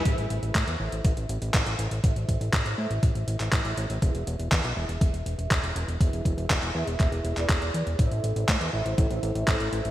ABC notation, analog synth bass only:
X:1
M:4/4
L:1/16
Q:1/4=121
K:Am
V:1 name="Analog synth bass" clef=bass
A,,, A,,, A,,, A,,, A,, E,, A,,, A,,, A,,, A,,, A,,, A,,, A,,, A,,, A,,, A,,, | A,,, A,,, A,,, A,,, A,,, A,,, A,, A,,, A,,, A,,, A,,, A,,, A,,, A,,, A,,, A,,, | E,,, E,,, E,,, E,,, E,, B,,, E,,, E,,, E,,, E,,, E,,, E,,, E,,, E,,, E,,, E,,, | E,,, E,,, E,,, E,,, E,,, E,,, E,, E,,, E,,, E,,, E,,, E,,, E,,, E,,, E,, E,,, |
A,,, A,,, A,,, A,,, A,, E,, A,,, A,,, A,,, A,,, A,,, A,,, A,,, A,,, A,,, A,,, |]